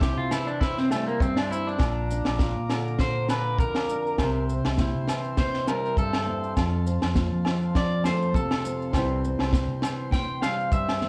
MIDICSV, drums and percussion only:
0, 0, Header, 1, 2, 480
1, 0, Start_track
1, 0, Tempo, 595238
1, 1453, Time_signature, 4, 2, 24, 8
1, 8941, End_track
2, 0, Start_track
2, 0, Title_t, "Drums"
2, 9, Note_on_c, 9, 36, 95
2, 15, Note_on_c, 9, 38, 69
2, 20, Note_on_c, 9, 70, 81
2, 90, Note_off_c, 9, 36, 0
2, 95, Note_off_c, 9, 38, 0
2, 100, Note_off_c, 9, 70, 0
2, 251, Note_on_c, 9, 68, 73
2, 253, Note_on_c, 9, 38, 73
2, 258, Note_on_c, 9, 70, 109
2, 331, Note_off_c, 9, 68, 0
2, 333, Note_off_c, 9, 38, 0
2, 338, Note_off_c, 9, 70, 0
2, 387, Note_on_c, 9, 70, 26
2, 467, Note_off_c, 9, 70, 0
2, 492, Note_on_c, 9, 36, 92
2, 496, Note_on_c, 9, 38, 70
2, 503, Note_on_c, 9, 70, 67
2, 572, Note_off_c, 9, 36, 0
2, 576, Note_off_c, 9, 38, 0
2, 583, Note_off_c, 9, 70, 0
2, 626, Note_on_c, 9, 38, 24
2, 707, Note_off_c, 9, 38, 0
2, 733, Note_on_c, 9, 38, 69
2, 739, Note_on_c, 9, 68, 75
2, 739, Note_on_c, 9, 70, 96
2, 814, Note_off_c, 9, 38, 0
2, 819, Note_off_c, 9, 68, 0
2, 819, Note_off_c, 9, 70, 0
2, 875, Note_on_c, 9, 70, 29
2, 956, Note_off_c, 9, 70, 0
2, 971, Note_on_c, 9, 36, 101
2, 984, Note_on_c, 9, 70, 77
2, 1051, Note_off_c, 9, 36, 0
2, 1064, Note_off_c, 9, 70, 0
2, 1101, Note_on_c, 9, 38, 70
2, 1114, Note_on_c, 9, 68, 68
2, 1182, Note_off_c, 9, 38, 0
2, 1195, Note_off_c, 9, 68, 0
2, 1230, Note_on_c, 9, 70, 96
2, 1310, Note_off_c, 9, 70, 0
2, 1359, Note_on_c, 9, 70, 31
2, 1439, Note_on_c, 9, 38, 68
2, 1440, Note_off_c, 9, 70, 0
2, 1447, Note_on_c, 9, 36, 97
2, 1456, Note_on_c, 9, 68, 64
2, 1468, Note_on_c, 9, 70, 63
2, 1520, Note_off_c, 9, 38, 0
2, 1528, Note_off_c, 9, 36, 0
2, 1537, Note_off_c, 9, 68, 0
2, 1548, Note_off_c, 9, 70, 0
2, 1699, Note_on_c, 9, 70, 100
2, 1779, Note_off_c, 9, 70, 0
2, 1815, Note_on_c, 9, 38, 73
2, 1824, Note_on_c, 9, 68, 64
2, 1838, Note_on_c, 9, 70, 26
2, 1896, Note_off_c, 9, 38, 0
2, 1905, Note_off_c, 9, 68, 0
2, 1919, Note_off_c, 9, 70, 0
2, 1928, Note_on_c, 9, 38, 72
2, 1930, Note_on_c, 9, 36, 94
2, 1939, Note_on_c, 9, 70, 71
2, 2009, Note_off_c, 9, 38, 0
2, 2011, Note_off_c, 9, 36, 0
2, 2020, Note_off_c, 9, 70, 0
2, 2174, Note_on_c, 9, 38, 76
2, 2178, Note_on_c, 9, 68, 74
2, 2187, Note_on_c, 9, 70, 83
2, 2255, Note_off_c, 9, 38, 0
2, 2258, Note_off_c, 9, 68, 0
2, 2267, Note_off_c, 9, 70, 0
2, 2319, Note_on_c, 9, 70, 25
2, 2399, Note_off_c, 9, 70, 0
2, 2408, Note_on_c, 9, 38, 70
2, 2411, Note_on_c, 9, 36, 82
2, 2423, Note_on_c, 9, 70, 67
2, 2488, Note_off_c, 9, 38, 0
2, 2491, Note_off_c, 9, 36, 0
2, 2503, Note_off_c, 9, 70, 0
2, 2650, Note_on_c, 9, 38, 69
2, 2657, Note_on_c, 9, 70, 87
2, 2664, Note_on_c, 9, 68, 70
2, 2731, Note_off_c, 9, 38, 0
2, 2738, Note_off_c, 9, 70, 0
2, 2744, Note_off_c, 9, 68, 0
2, 2891, Note_on_c, 9, 36, 98
2, 2904, Note_on_c, 9, 70, 77
2, 2972, Note_off_c, 9, 36, 0
2, 2985, Note_off_c, 9, 70, 0
2, 3023, Note_on_c, 9, 38, 72
2, 3031, Note_on_c, 9, 68, 65
2, 3103, Note_off_c, 9, 38, 0
2, 3112, Note_off_c, 9, 68, 0
2, 3139, Note_on_c, 9, 70, 90
2, 3220, Note_off_c, 9, 70, 0
2, 3280, Note_on_c, 9, 70, 28
2, 3361, Note_off_c, 9, 70, 0
2, 3372, Note_on_c, 9, 38, 72
2, 3374, Note_on_c, 9, 68, 65
2, 3375, Note_on_c, 9, 36, 82
2, 3382, Note_on_c, 9, 62, 33
2, 3387, Note_on_c, 9, 70, 75
2, 3453, Note_off_c, 9, 38, 0
2, 3455, Note_off_c, 9, 68, 0
2, 3456, Note_off_c, 9, 36, 0
2, 3463, Note_off_c, 9, 62, 0
2, 3468, Note_off_c, 9, 70, 0
2, 3617, Note_on_c, 9, 62, 33
2, 3624, Note_on_c, 9, 70, 91
2, 3698, Note_off_c, 9, 62, 0
2, 3705, Note_off_c, 9, 70, 0
2, 3748, Note_on_c, 9, 38, 78
2, 3752, Note_on_c, 9, 68, 64
2, 3758, Note_on_c, 9, 70, 29
2, 3829, Note_off_c, 9, 38, 0
2, 3833, Note_off_c, 9, 68, 0
2, 3838, Note_off_c, 9, 70, 0
2, 3849, Note_on_c, 9, 62, 32
2, 3849, Note_on_c, 9, 63, 99
2, 3851, Note_on_c, 9, 38, 68
2, 3855, Note_on_c, 9, 36, 85
2, 3858, Note_on_c, 9, 70, 76
2, 3929, Note_off_c, 9, 62, 0
2, 3929, Note_off_c, 9, 63, 0
2, 3932, Note_off_c, 9, 38, 0
2, 3936, Note_off_c, 9, 36, 0
2, 3939, Note_off_c, 9, 70, 0
2, 4093, Note_on_c, 9, 38, 69
2, 4105, Note_on_c, 9, 68, 74
2, 4106, Note_on_c, 9, 70, 98
2, 4174, Note_off_c, 9, 38, 0
2, 4186, Note_off_c, 9, 68, 0
2, 4187, Note_off_c, 9, 70, 0
2, 4229, Note_on_c, 9, 70, 26
2, 4309, Note_off_c, 9, 70, 0
2, 4333, Note_on_c, 9, 38, 64
2, 4334, Note_on_c, 9, 70, 78
2, 4335, Note_on_c, 9, 36, 88
2, 4341, Note_on_c, 9, 62, 31
2, 4341, Note_on_c, 9, 63, 72
2, 4413, Note_off_c, 9, 38, 0
2, 4414, Note_off_c, 9, 70, 0
2, 4416, Note_off_c, 9, 36, 0
2, 4421, Note_off_c, 9, 62, 0
2, 4421, Note_off_c, 9, 63, 0
2, 4465, Note_on_c, 9, 38, 24
2, 4546, Note_off_c, 9, 38, 0
2, 4576, Note_on_c, 9, 38, 66
2, 4579, Note_on_c, 9, 70, 95
2, 4582, Note_on_c, 9, 68, 69
2, 4657, Note_off_c, 9, 38, 0
2, 4659, Note_off_c, 9, 70, 0
2, 4663, Note_off_c, 9, 68, 0
2, 4717, Note_on_c, 9, 70, 32
2, 4797, Note_off_c, 9, 70, 0
2, 4815, Note_on_c, 9, 36, 90
2, 4822, Note_on_c, 9, 70, 75
2, 4896, Note_off_c, 9, 36, 0
2, 4903, Note_off_c, 9, 70, 0
2, 4947, Note_on_c, 9, 38, 67
2, 4947, Note_on_c, 9, 68, 74
2, 5028, Note_off_c, 9, 38, 0
2, 5028, Note_off_c, 9, 68, 0
2, 5055, Note_on_c, 9, 63, 75
2, 5136, Note_off_c, 9, 63, 0
2, 5192, Note_on_c, 9, 70, 30
2, 5272, Note_off_c, 9, 70, 0
2, 5296, Note_on_c, 9, 70, 76
2, 5297, Note_on_c, 9, 36, 84
2, 5297, Note_on_c, 9, 68, 67
2, 5301, Note_on_c, 9, 38, 67
2, 5377, Note_off_c, 9, 68, 0
2, 5377, Note_off_c, 9, 70, 0
2, 5378, Note_off_c, 9, 36, 0
2, 5381, Note_off_c, 9, 38, 0
2, 5527, Note_on_c, 9, 62, 33
2, 5537, Note_on_c, 9, 70, 100
2, 5607, Note_off_c, 9, 62, 0
2, 5618, Note_off_c, 9, 70, 0
2, 5660, Note_on_c, 9, 38, 78
2, 5662, Note_on_c, 9, 68, 68
2, 5666, Note_on_c, 9, 70, 31
2, 5741, Note_off_c, 9, 38, 0
2, 5743, Note_off_c, 9, 68, 0
2, 5746, Note_off_c, 9, 70, 0
2, 5762, Note_on_c, 9, 62, 29
2, 5762, Note_on_c, 9, 63, 86
2, 5770, Note_on_c, 9, 38, 66
2, 5772, Note_on_c, 9, 36, 92
2, 5773, Note_on_c, 9, 70, 81
2, 5843, Note_off_c, 9, 62, 0
2, 5843, Note_off_c, 9, 63, 0
2, 5850, Note_off_c, 9, 38, 0
2, 5853, Note_off_c, 9, 36, 0
2, 5853, Note_off_c, 9, 70, 0
2, 6007, Note_on_c, 9, 68, 71
2, 6016, Note_on_c, 9, 38, 79
2, 6087, Note_off_c, 9, 68, 0
2, 6097, Note_off_c, 9, 38, 0
2, 6150, Note_on_c, 9, 70, 29
2, 6231, Note_off_c, 9, 70, 0
2, 6250, Note_on_c, 9, 38, 72
2, 6251, Note_on_c, 9, 36, 91
2, 6256, Note_on_c, 9, 70, 74
2, 6331, Note_off_c, 9, 38, 0
2, 6332, Note_off_c, 9, 36, 0
2, 6337, Note_off_c, 9, 70, 0
2, 6483, Note_on_c, 9, 63, 72
2, 6484, Note_on_c, 9, 68, 65
2, 6492, Note_on_c, 9, 38, 64
2, 6495, Note_on_c, 9, 70, 98
2, 6563, Note_off_c, 9, 63, 0
2, 6565, Note_off_c, 9, 68, 0
2, 6573, Note_off_c, 9, 38, 0
2, 6576, Note_off_c, 9, 70, 0
2, 6631, Note_on_c, 9, 70, 31
2, 6712, Note_off_c, 9, 70, 0
2, 6719, Note_on_c, 9, 63, 72
2, 6729, Note_on_c, 9, 36, 90
2, 6741, Note_on_c, 9, 70, 90
2, 6799, Note_off_c, 9, 63, 0
2, 6810, Note_off_c, 9, 36, 0
2, 6822, Note_off_c, 9, 70, 0
2, 6862, Note_on_c, 9, 38, 68
2, 6863, Note_on_c, 9, 68, 69
2, 6943, Note_off_c, 9, 38, 0
2, 6944, Note_off_c, 9, 68, 0
2, 6976, Note_on_c, 9, 70, 98
2, 7057, Note_off_c, 9, 70, 0
2, 7112, Note_on_c, 9, 70, 27
2, 7193, Note_off_c, 9, 70, 0
2, 7202, Note_on_c, 9, 62, 32
2, 7203, Note_on_c, 9, 38, 72
2, 7206, Note_on_c, 9, 36, 91
2, 7211, Note_on_c, 9, 68, 63
2, 7221, Note_on_c, 9, 70, 72
2, 7283, Note_off_c, 9, 62, 0
2, 7284, Note_off_c, 9, 38, 0
2, 7286, Note_off_c, 9, 36, 0
2, 7292, Note_off_c, 9, 68, 0
2, 7301, Note_off_c, 9, 70, 0
2, 7445, Note_on_c, 9, 62, 31
2, 7456, Note_on_c, 9, 70, 106
2, 7525, Note_off_c, 9, 62, 0
2, 7537, Note_off_c, 9, 70, 0
2, 7573, Note_on_c, 9, 38, 78
2, 7581, Note_on_c, 9, 68, 70
2, 7594, Note_on_c, 9, 70, 31
2, 7654, Note_off_c, 9, 38, 0
2, 7662, Note_off_c, 9, 68, 0
2, 7675, Note_off_c, 9, 70, 0
2, 7683, Note_on_c, 9, 36, 90
2, 7683, Note_on_c, 9, 38, 71
2, 7688, Note_on_c, 9, 62, 30
2, 7688, Note_on_c, 9, 63, 93
2, 7701, Note_on_c, 9, 70, 85
2, 7763, Note_off_c, 9, 38, 0
2, 7764, Note_off_c, 9, 36, 0
2, 7769, Note_off_c, 9, 62, 0
2, 7769, Note_off_c, 9, 63, 0
2, 7782, Note_off_c, 9, 70, 0
2, 7920, Note_on_c, 9, 38, 76
2, 7928, Note_on_c, 9, 68, 74
2, 7940, Note_on_c, 9, 70, 106
2, 8001, Note_off_c, 9, 38, 0
2, 8009, Note_off_c, 9, 68, 0
2, 8020, Note_off_c, 9, 70, 0
2, 8154, Note_on_c, 9, 62, 31
2, 8154, Note_on_c, 9, 63, 80
2, 8163, Note_on_c, 9, 38, 66
2, 8164, Note_on_c, 9, 36, 90
2, 8174, Note_on_c, 9, 70, 75
2, 8235, Note_off_c, 9, 62, 0
2, 8235, Note_off_c, 9, 63, 0
2, 8244, Note_off_c, 9, 38, 0
2, 8245, Note_off_c, 9, 36, 0
2, 8254, Note_off_c, 9, 70, 0
2, 8404, Note_on_c, 9, 38, 69
2, 8410, Note_on_c, 9, 68, 75
2, 8413, Note_on_c, 9, 70, 113
2, 8485, Note_off_c, 9, 38, 0
2, 8491, Note_off_c, 9, 68, 0
2, 8494, Note_off_c, 9, 70, 0
2, 8551, Note_on_c, 9, 70, 32
2, 8632, Note_off_c, 9, 70, 0
2, 8643, Note_on_c, 9, 36, 89
2, 8645, Note_on_c, 9, 70, 81
2, 8723, Note_off_c, 9, 36, 0
2, 8726, Note_off_c, 9, 70, 0
2, 8778, Note_on_c, 9, 38, 60
2, 8781, Note_on_c, 9, 68, 67
2, 8859, Note_off_c, 9, 38, 0
2, 8861, Note_off_c, 9, 68, 0
2, 8881, Note_on_c, 9, 38, 32
2, 8887, Note_on_c, 9, 63, 71
2, 8941, Note_off_c, 9, 38, 0
2, 8941, Note_off_c, 9, 63, 0
2, 8941, End_track
0, 0, End_of_file